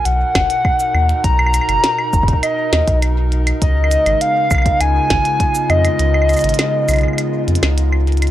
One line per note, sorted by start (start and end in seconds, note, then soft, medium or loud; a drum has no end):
0.00 3.62 B2 medium
0.00 8.31 D#4 medium
0.00 8.31 A#4 medium
0.05 0.24 B1 medium
0.05 1.23 F#5 loud
0.05 closed hi-hat medium
0.35 0.44 F#1 medium
0.35 kick loud
0.35 snare loud
0.35 closed hi-hat soft
0.35 claves medium
0.50 closed hi-hat medium
0.65 kick loud
0.65 claves soft
0.80 cabasa medium
0.94 1.13 D#2 loud
0.94 claves medium
1.09 closed hi-hat medium
1.24 1.60 B1 loud
1.24 2.39 A#5 loud
1.24 kick loud
1.24 closed hi-hat medium
1.39 claves medium
1.47 claves medium
1.54 closed hi-hat medium
1.54 cabasa medium
1.54 claves soft
1.61 claves soft
1.69 1.78 F#1 loud
1.69 closed hi-hat soft
1.69 claves medium
1.84 snare loud
1.84 closed hi-hat medium
1.99 claves medium
2.13 2.32 F#1 loud
2.13 kick loud
2.13 cabasa medium
2.23 kick medium
2.28 kick loud
2.28 closed hi-hat medium
2.33 kick medium
2.43 2.98 D#5 medium
2.43 closed hi-hat medium
2.43 claves medium
2.73 2.82 D#2 medium
2.73 snare loud
2.73 closed hi-hat soft
2.73 claves medium
2.88 3.53 B1 loud
2.88 kick loud
2.88 closed hi-hat medium
3.02 closed hi-hat medium
3.02 claves medium
3.32 closed hi-hat soft
3.47 closed hi-hat soft
3.47 claves medium
3.62 3.97 C#2 loud
3.62 8.31 C#3 medium
3.62 4.23 D#5 loud
3.62 kick loud
3.62 closed hi-hat medium
3.72 8.31 G#3 medium
3.83 8.31 B3 medium
3.83 claves medium
3.91 closed hi-hat medium
3.91 cabasa medium
4.06 4.16 G#1 loud
4.06 closed hi-hat medium
4.06 claves medium
4.21 4.82 F5 loud
4.21 closed hi-hat medium
4.51 4.69 B1 loud
4.51 kick loud
4.51 cabasa medium
4.51 claves medium
4.55 8.31 F4 medium
4.55 claves medium
4.58 claves medium
4.62 kick loud
4.62 closed hi-hat medium
4.62 claves soft
4.81 4.99 C#2 medium
4.81 5.71 G#5 loud
4.81 closed hi-hat medium
4.81 claves medium
5.10 5.20 G#1 medium
5.10 kick loud
5.10 snare loud
5.10 claves medium
5.25 closed hi-hat medium
5.40 kick loud
5.40 closed hi-hat medium
5.55 cabasa medium
5.70 5.88 F2 loud
5.70 7.78 D#5 loud
5.70 closed hi-hat soft
5.70 claves medium
5.85 closed hi-hat medium
5.85 claves medium
5.99 6.35 C#2 loud
5.99 closed hi-hat medium
6.14 claves medium
6.22 claves soft
6.29 closed hi-hat soft
6.29 cabasa soft
6.29 claves soft
6.33 closed hi-hat soft
6.33 cabasa soft
6.37 closed hi-hat soft
6.37 cabasa medium
6.37 claves soft
6.40 6.53 G#1 loud
6.40 closed hi-hat medium
6.40 cabasa medium
6.49 closed hi-hat medium
6.54 closed hi-hat medium
6.59 snare loud
6.59 closed hi-hat medium
6.59 claves medium
6.89 7.07 B1 loud
6.89 closed hi-hat soft
6.89 cabasa medium
6.89 claves medium
6.91 closed hi-hat soft
6.94 closed hi-hat soft
6.94 claves soft
6.96 closed hi-hat soft
6.99 closed hi-hat soft
6.99 claves soft
7.01 closed hi-hat soft
7.01 claves soft
7.08 claves soft
7.13 claves soft
7.18 closed hi-hat medium
7.18 claves medium
7.48 7.57 F2 medium
7.48 closed hi-hat soft
7.55 closed hi-hat medium
7.63 8.28 C#2 loud
7.63 snare loud
7.63 claves medium
7.78 closed hi-hat medium
7.93 claves medium
8.07 closed hi-hat soft
8.12 closed hi-hat soft
8.17 closed hi-hat soft
8.22 closed hi-hat medium
8.22 claves medium
8.27 closed hi-hat soft